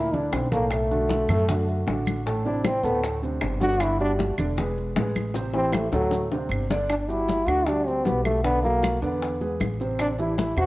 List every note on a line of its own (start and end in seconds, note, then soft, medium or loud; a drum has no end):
0.00 0.28 D2 loud
0.00 0.16 E4 medium
0.13 0.46 D3 medium
0.13 0.35 D4 medium
0.13 0.46 D4 medium
0.13 0.46 E4 medium
0.13 high bongo soft
0.13 low conga medium
0.13 maracas soft
0.32 1.23 B1 medium
0.32 0.51 C4 medium
0.32 high bongo medium
0.32 low bongo medium
0.32 claves medium
0.32 maracas soft
0.52 0.84 A2 medium
0.52 0.84 A3 medium
0.52 0.73 A#3 medium
0.52 0.84 A4 medium
0.52 high bongo soft
0.52 low conga medium
0.52 maracas medium
0.71 1.88 A3 medium
0.71 high bongo medium
0.71 high conga soft
0.71 claves medium
0.71 maracas medium
0.91 1.23 D3 medium
0.91 1.23 D4 medium
0.91 1.23 F#4 medium
0.91 high conga soft
0.91 maracas soft
1.09 high bongo medium
1.09 high conga medium
1.09 maracas soft
1.29 1.83 F#2 loud
1.29 1.45 A2 medium
1.29 1.45 A3 medium
1.29 1.46 A4 medium
1.29 high conga soft
1.29 low conga medium
1.29 claves medium
1.29 maracas medium
1.49 1.81 D3 medium
1.49 1.81 D4 medium
1.49 1.81 F#4 medium
1.49 high bongo medium
1.49 high conga soft
1.49 low conga medium
1.49 maracas medium
1.68 high conga soft
1.68 maracas soft
1.87 2.78 A1 medium
1.87 2.19 D3 medium
1.87 2.19 D4 medium
1.87 2.19 F#4 medium
1.87 high bongo medium
1.87 low bongo medium
1.87 high conga medium
1.87 maracas soft
2.07 high conga medium
2.07 claves medium
2.07 maracas medium
2.26 2.42 A2 medium
2.26 2.42 A3 medium
2.26 2.42 A4 medium
2.26 high bongo medium
2.26 high conga soft
2.26 maracas medium
2.45 2.77 C3 medium
2.45 2.77 C4 medium
2.45 2.67 D4 medium
2.45 2.77 E4 medium
2.45 high conga soft
2.45 maracas soft
2.64 2.85 C4 medium
2.64 high bongo medium
2.64 high conga loud
2.64 claves medium
2.64 maracas soft
2.83 3.38 D2 loud
2.83 3.16 A2 medium
2.83 3.16 A3 medium
2.83 3.03 B3 medium
2.83 3.16 A4 medium
2.83 high bongo soft
2.83 high conga soft
2.83 maracas medium
3.04 high bongo medium
3.04 high conga soft
3.04 maracas medium
3.22 3.54 C3 medium
3.22 3.54 C4 medium
3.22 3.55 D4 medium
3.22 high bongo soft
3.22 high conga soft
3.22 maracas soft
3.41 4.32 G1 medium
3.41 high bongo medium
3.41 low bongo medium
3.41 high conga soft
3.41 claves medium
3.41 maracas soft
3.61 3.93 D3 medium
3.61 3.93 D4 medium
3.61 3.84 F#4 loud
3.61 3.93 D5 medium
3.61 high bongo soft
3.61 high conga medium
3.61 maracas medium
3.80 4.01 E4 loud
3.80 high bongo medium
3.80 high conga soft
3.80 claves medium
3.80 maracas medium
4.00 4.32 G3 medium
4.00 4.12 D4 loud
4.00 4.32 F#4 medium
4.00 4.32 G4 medium
4.00 high conga soft
4.00 maracas soft
4.19 high bongo medium
4.19 high conga loud
4.19 maracas soft
4.38 4.92 E1 loud
4.38 4.54 D3 medium
4.38 4.55 D4 medium
4.38 4.55 D5 medium
4.38 high conga soft
4.38 low conga medium
4.38 claves medium
4.38 maracas medium
4.57 4.89 G#3 medium
4.57 4.90 G#4 medium
4.57 4.90 B4 medium
4.57 high bongo medium
4.57 high conga soft
4.57 low conga medium
4.57 maracas medium
4.77 high conga soft
4.77 maracas soft
4.96 5.87 A1 loud
4.96 5.28 G#3 medium
4.96 5.29 G#4 medium
4.96 5.29 B4 medium
4.96 high bongo medium
4.96 low bongo medium
4.96 high conga medium
4.96 maracas soft
5.16 high conga medium
5.16 claves medium
5.16 maracas medium
5.34 5.51 C3 medium
5.34 5.51 C4 medium
5.34 5.51 C5 medium
5.34 high bongo medium
5.34 high conga soft
5.34 maracas loud
5.54 5.86 E3 medium
5.54 5.75 C4 loud
5.54 5.87 E4 medium
5.54 5.87 G4 medium
5.54 high bongo medium
5.54 high conga soft
5.54 maracas soft
5.72 5.92 A3 medium
5.72 high bongo medium
5.72 high conga loud
5.72 claves medium
5.72 maracas soft
5.92 6.46 D2 medium
5.92 6.25 A2 medium
5.92 6.29 F#3 medium
5.92 6.25 A3 medium
5.92 6.25 A4 medium
5.92 low bongo loud
5.92 high conga soft
5.92 maracas medium
6.11 low bongo medium
6.11 high conga soft
6.11 maracas medium
6.31 6.63 C3 medium
6.31 6.64 C4 medium
6.31 6.64 D4 medium
6.31 low bongo medium
6.31 high conga soft
6.31 maracas soft
6.49 7.41 G1 loud
6.49 high conga soft
6.49 claves medium
6.49 maracas soft
6.70 6.86 D3 medium
6.70 6.86 D4 medium
6.70 6.86 D5 medium
6.70 low bongo loud
6.70 high conga medium
6.70 maracas medium
6.90 6.95 D4 medium
6.90 high bongo medium
6.90 high conga soft
6.90 claves medium
6.90 maracas medium
7.01 7.11 D4 medium
7.08 7.40 G3 medium
7.08 7.49 E4 loud
7.08 7.40 F#4 medium
7.08 7.41 G4 medium
7.08 high bongo soft
7.08 high conga soft
7.08 maracas soft
7.28 high bongo medium
7.28 high conga medium
7.28 maracas medium
7.46 8.01 D2 medium
7.46 7.64 D3 medium
7.46 7.64 D4 medium
7.46 7.69 F#4 loud
7.46 7.64 D5 medium
7.46 high conga soft
7.46 claves medium
7.46 maracas soft
7.66 7.99 G3 medium
7.66 7.89 D4 loud
7.66 7.99 F#4 medium
7.66 7.99 G4 medium
7.66 high bongo medium
7.66 high conga soft
7.66 maracas medium
7.87 8.07 C4 medium
7.87 high bongo soft
7.87 high conga soft
7.87 maracas soft
8.05 8.96 B1 medium
8.05 8.38 G3 medium
8.05 8.23 B3 medium
8.05 8.38 F#4 medium
8.05 8.38 G4 medium
8.05 high bongo soft
8.05 low bongo medium
8.05 high conga medium
8.05 maracas medium
8.24 8.42 A3 medium
8.24 high bongo soft
8.24 high conga medium
8.24 claves medium
8.24 maracas soft
8.44 8.60 D3 medium
8.44 8.62 B3 medium
8.44 8.60 D4 medium
8.44 8.61 D5 medium
8.44 high bongo medium
8.44 high conga soft
8.44 maracas medium
8.63 8.96 F#3 medium
8.63 8.99 A#3 medium
8.63 8.96 F#4 medium
8.63 8.96 A4 medium
8.63 high bongo soft
8.63 high conga soft
8.63 maracas soft
8.83 high bongo medium
8.83 high conga medium
8.83 claves medium
8.83 maracas medium
9.02 9.56 E2 loud
9.02 9.34 D3 medium
9.02 9.57 B3 medium
9.02 9.34 D4 medium
9.02 9.34 D5 medium
9.02 high conga soft
9.02 maracas soft
9.22 high bongo medium
9.22 high conga soft
9.22 maracas medium
9.41 9.73 G#3 medium
9.41 9.73 G#4 medium
9.41 9.73 B4 medium
9.41 high bongo soft
9.41 high conga soft
9.41 maracas soft
9.60 10.51 A1 loud
9.60 high bongo soft
9.60 low bongo medium
9.60 high conga medium
9.60 claves medium
9.60 maracas medium
9.80 10.12 C3 medium
9.80 10.12 C4 medium
9.80 10.12 C5 medium
9.80 high bongo soft
9.80 maracas soft
9.99 10.09 D4 loud
9.99 high bongo medium
9.99 high conga soft
9.99 claves medium
9.99 maracas medium
10.19 10.51 E3 medium
10.19 10.51 E4 medium
10.19 10.37 E4 medium
10.19 10.51 G4 medium
10.19 high bongo soft
10.19 high conga soft
10.19 maracas soft
10.38 10.57 E4 medium
10.38 high bongo medium
10.38 high conga loud
10.38 maracas medium
10.57 10.66 E2 loud
10.57 10.66 C3 medium
10.57 10.66 C4 medium
10.57 10.66 F#4 loud
10.57 10.66 C5 medium
10.57 high conga soft
10.57 claves medium
10.57 maracas soft